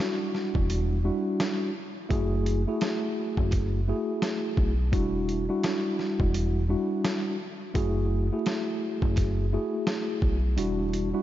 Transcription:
Already playing: tine electric piano G3 D4 E4 F#4
0.00 snare
0.35 snare
0.55 fingered electric bass E1, kick
0.70 closed hi-hat
1.04 tine electric piano G3 D4 E4 F#4
1.40 snare, closed hi-hat
2.09 fingered electric bass F#1, tine electric piano A3 E4 F#4 G#4, kick, closed hi-hat
2.46 closed hi-hat
2.67 tine electric piano A3 E4 F#4 G#4
2.81 snare, closed hi-hat
3.37 fingered electric bass F#1, kick
3.51 kick, snare, closed hi-hat
3.88 tine electric piano A3 E4 F#4 G#4
4.22 snare, closed hi-hat
4.57 fingered electric bass B1, kick
4.92 fingered electric bass E1, tine electric piano G3 D4 E4 F#4, kick, closed hi-hat
5.29 closed hi-hat
5.48 tine electric piano G3 D4 E4 F#4
5.63 snare, closed hi-hat
5.99 snare
6.20 fingered electric bass E1, kick
6.34 closed hi-hat
6.69 tine electric piano G3 D4 E4 F#4
7.05 snare, closed hi-hat
7.74 fingered electric bass F#1, tine electric piano A3 E4 F#4 G#4, kick, closed hi-hat
8.32 tine electric piano A3 E4 F#4 G#4
8.46 snare, closed hi-hat
9.02 fingered electric bass F#1, kick
9.16 kick, snare, closed hi-hat
9.53 tine electric piano A3 E4 F#4 G#4
9.87 snare, closed hi-hat
10.22 fingered electric bass B1, kick
10.56 fingered electric bass E1, tine electric piano G3 D4 E4 F#4, closed hi-hat
10.93 closed hi-hat
11.13 tine electric piano G3 D4 E4 F#4

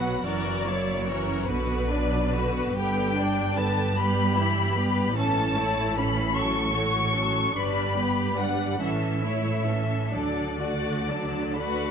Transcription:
Already playing: double bass section B1, cello section B2, viola section F#3 B3, violin section F#4 B4 F#5
0.25 double bass section F#1, cello section F#2, viola section E3 C#4, violin section F#4 A#4 D5
0.66 viola section F#3 A#3, violin section E4 C#5
1.07 viola section E3 C#4, violin section F#4 A#4 C#5
1.48 double bass section B1, cello section B2, viola section D3 B3, violin section F#4 B4
1.90 viola section F#3 D4, violin section D4 D5
2.35 viola section D3 B3, violin section F#4 B4
2.77 double bass section G1, cello section G2, viola section D3 B3, violin section G4 B4 G5
3.18 viola section G3 D4, violin section D4 D5
3.57 viola section D3 B3, violin section G4 B4 A5
3.97 viola section G3 B3, violin section G4 B4 B5
4.37 viola section E3 G3, violin section E4 G4
4.76 viola section G3 B3, violin section G4 B4
5.16 double bass section A1, cello section A2, viola section E3 C#4, violin section C#4 A4 A5
5.57 viola section A3 E4, violin section E4 C#5
5.96 viola section E3 C#4, violin section C#4 A4 B5
6.34 viola section F#3 C#4, violin section A4 C#6
6.73 viola section A3, violin section F#4 C#5
7.14 viola section F#3 C#4, violin section A4
7.54 double bass section G1, cello section G2, viola section G3 D4, violin section B4 D5 B5
7.97 viola section B3, violin section G4 B4
8.37 viola section G3 D4, violin section B4 D5 F#5
8.80 double bass section A1, cello section A2, viola section E3 C#4, violin section C#4 A4 E5
9.23 viola section A3 E4, violin section E4 C#5
9.67 viola section E3 C#4, violin section C#4 A4
10.11 double bass section D2, cello section D3, viola section F#3 D4, violin section A4 D5
10.58 viola section A3 F#4, violin section F#4 D5
11.08 viola section F#3 D4, violin section A4
11.55 viola section A3 F#4, violin section F#4 B4 D5 B5

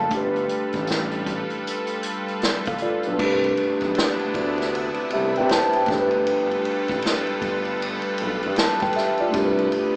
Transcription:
Already playing: tine electric piano F3 A3 B3 F5 A5, ambient pad G3 B4
0.09 analog synth bass G1, ambient pad G3 F4 A4 B4, tine electric piano A3 D4, kick, closed hi-hat
0.15 tine electric piano G4 B4
0.36 closed hi-hat
0.49 closed hi-hat
0.73 analog synth bass A1, kick, closed hi-hat
0.87 snare, closed hi-hat
1.11 closed hi-hat
1.26 kick, closed hi-hat
1.50 closed hi-hat
1.67 closed hi-hat
1.87 closed hi-hat
2.03 closed hi-hat
2.28 closed hi-hat
2.42 analog synth bass G1, snare, closed hi-hat
2.65 analog synth bass G1, tine electric piano A4 F5, kick, closed hi-hat
2.78 tine electric piano D5, closed hi-hat
2.83 tine electric piano F4
3.03 tine electric piano B4, closed hi-hat
3.07 analog synth bass B1, tine electric piano D4
3.17 analog synth bass C2, ambient pad C3 B3 D4 E4, tine electric piano A3 D4, kick, crash
3.23 tine electric piano G4 B4
3.44 ride
3.57 ride
3.81 analog synth bass B1, kick, ride
3.95 snare, ride
4.19 analog synth bass D2, ride
4.34 analog synth bass D2, kick, ride
4.58 snare, ride
4.75 ride
4.94 ride
5.10 tine electric piano G4 E5, ride
5.15 analog synth bass C2
5.36 analog synth bass C3, tine electric piano B4 G5, ride
5.49 tine electric piano C5 A5, snare, ride
5.73 tine electric piano B4 G5, ride
5.86 analog synth bass G1, ambient pad G3 F4 A4 B4, tine electric piano A3 D4, kick, ride
5.91 tine electric piano G4 A4, snare
6.01 tine electric piano B4
6.11 ride
6.27 ride
6.51 ride
6.65 ride
6.88 analog synth bass A1, kick, ride
7.02 snare, ride
7.27 ride
7.31 analog synth bass G1
7.42 analog synth bass G1, kick, ride
7.65 ride
7.82 ride
8.02 ride
8.18 analog synth bass B1, ride
8.43 analog synth bass G2, ride
8.56 tine electric piano A5, snare, ride
8.80 tine electric piano B4 G5, kick, ride
8.93 tine electric piano G4 E5, ride
8.98 snare
9.18 tine electric piano F4 D5, ride
9.30 tine electric piano A3 D4, ambient pad D4, ride
9.34 analog synth bass C2, ambient pad C3 B3 E4, tine electric piano G4, kick
9.39 tine electric piano A#4
9.45 tine electric piano B4
9.59 ride
9.72 ride

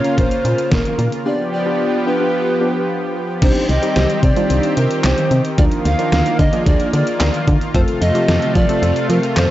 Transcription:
Already playing: analog synth pad C#3 A#3 F4, pan flute C#5
0.04 synth keys A#3 C#4 F4 A#4, closed hi-hat
0.18 fm bass A#1, pan flute C5, kick, closed hi-hat
0.31 closed hi-hat
0.45 fm bass A#2, synth keys A#3 C#4 F4 A#4, closed hi-hat
0.58 closed hi-hat
0.72 fm bass A#1, pan flute A#4, kick, snare, closed hi-hat
0.85 closed hi-hat
0.99 fm bass A#2, closed hi-hat
1.12 closed hi-hat
1.26 analog synth pad F3 B3 G4, synth keys B3 D4 F4 G4, pan flute D5
1.53 pan flute D5
1.66 synth keys B3 D4 F4 G4
2.07 synth keys B3 D4 F4 G4, pan flute B4
2.20 synth keys B3 D4 F4 G4
2.61 synth keys B3 D4 F4 G4
3.42 fm bass C2, analog synth pad D#3 C4 G4, synth keys G3 C4 D4 D#4 G4, pan flute C5, kick, closed hi-hat, crash
3.55 closed hi-hat
3.69 fm bass C2, pan flute D#5, closed hi-hat
3.83 synth keys G3 C4 D#4 G4, closed hi-hat
3.96 fm bass C2, snare, closed hi-hat
4.10 closed hi-hat
4.23 fm bass C3, pan flute D5, kick, closed hi-hat
4.36 synth keys G3 C4 D4 D#4 F4, closed hi-hat
4.50 fm bass C2, closed hi-hat
4.63 closed hi-hat
4.77 fm bass C3, pan flute A#4, closed hi-hat
4.91 closed hi-hat
5.04 fm bass C2, pan flute C5, snare, clap, closed hi-hat
5.18 closed hi-hat
5.31 fm bass C3, closed hi-hat
5.45 closed hi-hat
5.58 fm bass D2, synth keys F3 A#3 D4 F4 A#4, analog synth pad A#3 F4, pan flute D5, kick, closed hi-hat
5.71 closed hi-hat
5.85 fm bass D2, pan flute F5, closed hi-hat
5.99 synth keys F3 A#3 D4 F4 A#4, closed hi-hat
6.12 fm bass D2, snare, closed hi-hat
6.26 closed hi-hat
6.39 fm bass D3, pan flute D#5, kick, closed hi-hat
6.53 synth keys F3 A#3 D4 F4 G#4, closed hi-hat
6.66 fm bass D2, pan flute D5, kick, closed hi-hat
6.80 closed hi-hat
6.93 fm bass D3, pan flute D5, closed hi-hat
7.07 closed hi-hat
7.20 fm bass D2, snare, clap, closed hi-hat
7.34 closed hi-hat
7.48 fm bass D3, kick, closed hi-hat
7.61 closed hi-hat
7.74 fm bass F2, analog synth pad C3 A3, synth keys F3 A3 C4 F4 A4, pan flute C5, kick, closed hi-hat
7.88 closed hi-hat
8.01 fm bass F2, pan flute D#5, closed hi-hat
8.15 synth keys F3 A3 C4 F4 G4, closed hi-hat
8.28 fm bass F2, snare, closed hi-hat
8.42 closed hi-hat
8.55 fm bass F3, pan flute D5, kick, closed hi-hat
8.69 synth keys F3 A3 C4 F4 A4, closed hi-hat
8.82 fm bass F2, closed hi-hat
8.96 closed hi-hat
9.09 fm bass F3, pan flute A#4, closed hi-hat
9.23 closed hi-hat
9.36 fm bass F2, pan flute C5, snare, clap, closed hi-hat

